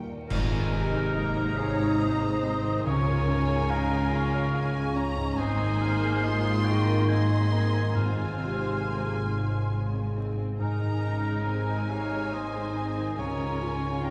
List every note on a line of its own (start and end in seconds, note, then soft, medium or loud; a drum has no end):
0.00 0.25 D#2 medium
0.00 0.32 A#2 soft
0.00 0.24 D#3 soft
0.00 1.38 A#3 soft
0.00 1.43 D#4 soft
0.00 0.30 F4 soft
0.00 0.31 F4 soft
0.00 0.31 G4 soft
0.29 2.83 G#1 medium
0.29 2.82 G#2 medium
0.29 1.54 G#2 medium
0.29 2.83 G#2 medium
0.29 2.90 G#2 medium
0.29 2.83 C3 medium
0.29 1.12 C4 medium
0.29 1.54 D#4 medium
0.29 2.83 D#4 medium
0.29 0.70 F4 medium
0.29 1.59 A#4 loud
0.29 1.12 G#5 medium
0.29 concert bass drum medium
0.29 crash medium
0.51 0.85 D#3 medium
0.73 2.90 C3 medium
0.73 1.07 C4 soft
0.73 2.87 D#4 medium
0.94 1.28 G#4 soft
1.15 1.58 A#3 medium
1.15 3.70 G#4 medium
1.15 1.49 D#5 medium
1.15 2.87 A#5 medium
1.15 2.82 D#6 medium
1.37 1.71 C5 medium
1.57 2.00 G#3 medium
1.57 2.01 C#5 medium
1.57 2.01 F5 loud
1.57 1.92 G#5 medium
1.57 2.90 C6 medium
1.79 2.14 C5 soft
1.99 2.43 A#3 medium
1.99 2.85 C5 medium
1.99 2.85 D#5 medium
1.99 2.35 D#5 medium
1.99 2.90 D#5 medium
2.22 2.56 G#4 soft
2.43 2.77 C4 medium
2.43 2.86 C4 medium
2.43 2.90 C5 medium
2.64 2.86 D#3 medium
2.85 5.34 C#2 medium
2.85 5.42 C#3 medium
2.85 5.35 C#3 medium
2.85 5.34 G#3 medium
2.85 3.69 C#4 medium
2.85 3.69 F4 medium
2.85 5.35 F4 medium
2.85 3.71 A#4 medium
2.85 3.72 C#5 loud
2.85 4.51 G#5 medium
2.85 3.28 C#6 medium
3.08 3.42 G#2 soft
3.29 3.63 C#4 medium
3.29 5.42 C#4 medium
3.29 3.72 G#5 medium
3.49 3.83 G#4 medium
3.70 4.12 C#4 medium
3.70 4.13 D#4 medium
3.70 4.96 F4 medium
3.70 6.22 G#4 medium
3.70 4.96 A#4 loud
3.70 4.04 F5 medium
3.70 4.13 A#5 medium
3.91 4.25 C#5 medium
4.11 4.54 C#4 medium
4.11 4.96 C#5 medium
4.11 4.45 G#5 medium
4.11 5.38 C#6 medium
4.32 4.66 C#5 medium
4.53 5.37 C#4 medium
4.53 4.87 F5 medium
4.53 5.42 F5 medium
4.53 4.96 G#5 medium
4.74 5.08 G#4 medium
4.96 5.30 C#4 medium
4.96 5.42 C#5 medium
4.96 5.38 A#5 medium
5.16 5.36 G#2 medium
5.38 10.36 G#1 medium
5.38 10.36 G#2 medium
5.38 7.91 G#2 medium
5.38 7.95 G#2 medium
5.38 7.79 A#3 medium
5.38 5.81 C4 medium
5.38 7.79 D#4 medium
5.38 6.23 D#4 medium
5.38 6.61 G#4 medium
5.38 6.67 C5 loud
5.38 6.23 G#5 medium
5.38 5.80 D#6 medium
5.59 5.93 D#3 medium
5.80 6.14 A#3 medium
5.80 7.99 A#3 medium
5.80 6.23 A#3 medium
5.80 6.23 F6 medium
6.02 6.36 G#4 medium
6.23 6.66 G#3 medium
6.23 7.09 F4 medium
6.23 8.82 G#4 medium
6.23 6.57 D#5 medium
6.23 7.08 C6 medium
6.23 6.65 D#6 medium
6.44 6.78 A#4 medium
6.65 7.09 A#3 medium
6.65 7.00 G#4 medium
6.65 7.51 A#4 medium
6.65 7.08 D#5 medium
6.65 7.10 G5 loud
6.65 7.08 C#6 medium
6.87 7.21 A#4 medium
7.09 7.95 C4 medium
7.09 7.51 D#4 medium
7.09 7.99 D#5 medium
7.09 7.43 D#5 medium
7.09 7.94 D#5 medium
7.09 7.95 G#5 medium
7.09 7.52 C6 medium
7.09 7.94 C6 medium
7.30 7.65 G#4 soft
7.52 7.87 A#3 medium
7.52 7.95 D#4 medium
7.52 7.99 A#4 medium
7.52 7.96 A#5 medium
7.73 7.95 D#3 soft
7.94 10.55 G#2 medium
7.94 9.23 G#2 medium
7.94 10.59 G#2 medium
7.94 13.14 G#3 medium
7.94 8.73 C4 medium
7.94 8.74 F4 medium
7.94 10.24 F4 medium
7.94 9.72 C5 medium
7.94 9.68 F5 medium
7.94 10.40 G#5 medium
7.94 10.17 C6 medium
8.16 8.51 G#3 soft
8.38 12.30 C3 soft
8.38 8.73 C4 soft
8.59 8.95 G#4 soft
8.82 9.24 A#3 medium
8.82 11.47 G#4 soft
8.82 9.17 C5 soft
9.05 9.40 G#4 soft
9.25 9.72 G#3 medium
9.25 9.62 G#5 soft
9.25 13.17 C6 soft
9.48 9.84 C5 soft
9.69 10.16 C#3 medium
9.69 10.06 G#4 soft
9.69 10.64 F5 medium
9.93 10.29 C4 soft
10.15 10.51 G#3 soft
10.15 10.60 C4 soft
10.37 10.60 C4 soft
10.59 13.14 G#1 medium
10.59 13.13 G#2 medium
10.59 13.21 G#2 medium
10.59 11.43 D#4 medium
10.59 13.14 D#4 medium
10.59 11.87 D#4 medium
10.59 11.92 A#4 medium
10.59 11.01 G#5 medium
10.59 11.44 A#5 medium
10.82 11.17 D#3 soft
11.03 11.46 C#3 medium
11.03 13.22 A#3 soft
11.03 11.39 D#4 soft
11.03 12.33 A#5 medium
11.25 11.60 G#4 soft
11.45 11.89 C4 medium
11.45 12.30 D#4 medium
11.45 14.02 G#4 soft
11.45 11.81 C5 soft
11.45 13.15 G#5 medium
11.69 12.03 D#5 medium
11.89 12.31 C3 medium
11.89 13.21 A#4 medium
11.89 12.33 C#5 medium
11.89 12.35 F5 medium
11.89 12.25 G#5 soft
12.12 12.46 D#5 soft
12.32 12.75 A#3 medium
12.32 13.17 D#4 medium
12.32 13.18 C5 medium
12.32 12.67 C5 soft
12.32 13.21 D#5 medium
12.32 13.18 D#5 medium
12.32 12.76 C6 medium
12.54 12.88 G#4 soft
12.75 13.17 C4 medium
12.75 13.10 D#4 soft
12.75 13.21 C5 medium
12.75 13.18 G#5 medium
12.98 13.18 D#3 soft
13.17 14.10 C#2 medium
13.17 14.10 C#3 medium
13.17 14.10 C#4 medium
13.17 14.03 C#4 medium
13.17 14.10 F4 medium
13.17 14.01 A#4 medium
13.17 14.01 C#5 medium
13.17 14.01 G#5 medium
13.17 13.60 A#5 medium
13.40 13.73 G#2 soft
13.60 14.10 C#4 soft
13.60 13.95 F4 soft
13.60 14.03 G#5 medium
13.80 14.10 G#4 soft
14.01 14.10 D#4 medium
14.01 14.10 F4 medium
14.01 14.10 G#4 medium
14.01 14.10 A#4 medium
14.01 14.10 C#5 medium
14.01 14.10 G5 medium